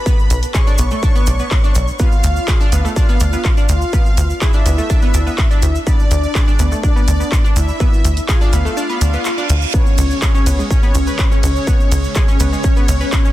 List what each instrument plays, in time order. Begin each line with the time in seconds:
Already playing: analog synth lead B4, supersaw synth B5
0.06 synth pluck B3 B4, kick, shaker
0.19 shaker
0.30 analog synth bass B1, closed hi-hat, shaker
0.43 closed hi-hat, shaker
0.54 synth pluck G#4 G#5, analog synth lead C#5, supersaw synth C#6, kick, clap, shaker
0.67 synth pluck D4 D5, shaker
0.78 analog synth bass B1, synth pluck B3 B4, closed hi-hat, shaker
0.91 synth pluck A3 A4, shaker
1.03 synth pluck D4 D5, kick, shaker
1.15 synth pluck B3 B4, shaker
1.26 analog synth bass B1, synth pluck D4 D5, closed hi-hat, shaker
1.39 synth pluck B3 B4, shaker
1.51 kick, clap, shaker
1.64 synth pluck D4 D5, shaker
1.75 analog synth bass B1, closed hi-hat, shaker
1.88 shaker
1.99 synth pluck B3 B4, analog synth lead F4, supersaw synth F5, kick, shaker
2.12 shaker
2.24 analog synth bass D2, closed hi-hat, shaker
2.36 shaker
2.48 synth pluck G#4 G#5, kick, clap, shaker
2.60 synth pluck D4 D5, shaker
2.72 analog synth bass D2, synth pluck B3 B4, closed hi-hat, shaker
2.85 synth pluck A3 A4, shaker
2.96 synth pluck D4 D5, analog synth lead F4, supersaw synth F5, kick, shaker
3.09 synth pluck B3 B4, shaker
3.20 analog synth bass D2, synth pluck D4 D5, closed hi-hat, shaker
3.33 synth pluck B3 B4, shaker
3.45 kick, clap, shaker
3.57 synth pluck D4 D5, shaker
3.69 analog synth bass D2, analog synth lead F4, supersaw synth F5, closed hi-hat, shaker
3.81 shaker
3.93 synth pluck B3 B4, kick, shaker
4.06 shaker
4.17 analog synth bass D2, closed hi-hat, shaker
4.30 shaker
4.41 analog synth lead E4, synth pluck G#4 G#5, supersaw synth E5, kick, clap, shaker
4.53 synth pluck D4 D5, shaker
4.66 analog synth bass D2, synth pluck B3 B4, closed hi-hat, shaker
4.78 synth pluck A3 A4, shaker
4.90 synth pluck D4 D5, kick, shaker
5.02 synth pluck B3 B4, shaker
5.14 analog synth bass D2, synth pluck D4 D5, closed hi-hat, shaker
5.27 synth pluck B3 B4, shaker
5.38 kick, clap, shaker
5.51 synth pluck D4 D5, shaker
5.62 analog synth bass D2, closed hi-hat, shaker
5.75 shaker
5.87 synth pluck B3 B4, analog synth lead D4, supersaw synth D5, kick, shaker
6.00 shaker
6.11 analog synth bass D2, closed hi-hat, shaker
6.23 shaker
6.35 synth pluck G#4 G#5, kick, clap, shaker
6.48 synth pluck D4 D5, shaker
6.59 analog synth bass D2, synth pluck B3 B4, closed hi-hat, shaker
6.72 synth pluck A3 A4, shaker
6.83 analog synth lead D4, synth pluck D4 D5, supersaw synth D5, kick, shaker
6.96 synth pluck B3 B4, shaker
7.08 analog synth bass D2, synth pluck D4 D5, closed hi-hat, shaker
7.20 synth pluck B3 B4, shaker
7.32 kick, clap, shaker
7.44 synth pluck D4 D5, shaker
7.56 analog synth bass D2, analog synth lead E4, supersaw synth E5, closed hi-hat, shaker
7.68 shaker
7.80 synth pluck B3 B4, kick, shaker
7.93 shaker
8.04 analog synth bass D2, closed hi-hat, shaker
8.17 closed hi-hat, shaker
8.29 analog synth lead F4, synth pluck G#4 G#5, supersaw synth F5, kick, clap, shaker
8.41 synth pluck D4 D5, shaker
8.53 analog synth bass D2, synth pluck B3 B4, closed hi-hat, shaker
8.65 synth pluck A3 A4, shaker
8.77 synth pluck D4 D5, reverse cymbal, shaker
8.89 synth pluck B3 B4, shaker
9.01 analog synth bass D2, synth pluck D4 D5, closed hi-hat, shaker
9.13 synth pluck B3 B4, shaker
9.25 clap, shaker
9.38 synth pluck D4 D5, shaker
9.49 analog synth bass D2, closed hi-hat, shaker
9.62 shaker
9.74 analog synth pad C#3 G#3 C#4, synth pluck B3 B4, analog synth lead C#4, supersaw synth C#5, kick, shaker
9.86 shaker
9.98 analog synth bass C#2, closed hi-hat, ride, shaker
10.10 shaker
10.22 synth pluck G#4 G#5, kick, clap, shaker
10.35 synth pluck C#4 C#5, shaker
10.46 analog synth bass C#2, synth pluck B3 B4, closed hi-hat, ride, shaker
10.59 synth pluck G#3 G#4, shaker
10.70 synth pluck C#4 C#5, analog synth lead C#4, supersaw synth C#5, kick, shaker
10.83 synth pluck B3 B4, shaker
10.95 analog synth bass C#2, synth pluck C#4 C#5, closed hi-hat, ride, shaker
11.07 synth pluck B4 B5, shaker
11.19 kick, clap, shaker
11.31 synth pluck C#4 C#5, shaker
11.43 analog synth bass C#2, analog synth lead C#4, supersaw synth C#5, closed hi-hat, ride, shaker
11.56 shaker
11.67 synth pluck B3 B4, kick, shaker
11.80 shaker
11.91 analog synth bass C#2, closed hi-hat, ride, shaker
12.04 shaker
12.15 analog synth lead C#4, synth pluck G#4 G#5, supersaw synth C#5, kick, clap, shaker
12.28 synth pluck C#4 C#5, shaker
12.40 analog synth bass C#2, synth pluck B3 B4, closed hi-hat, ride, shaker
12.52 synth pluck G#3 G#4, shaker
12.64 synth pluck C#4 C#5, kick, shaker
12.76 synth pluck B3 B4, shaker
12.88 analog synth bass C#2, synth pluck C#4 C#5, closed hi-hat, ride, shaker
13.01 synth pluck B4 B5, shaker
13.12 kick, clap, shaker
13.25 synth pluck C#4 C#5, shaker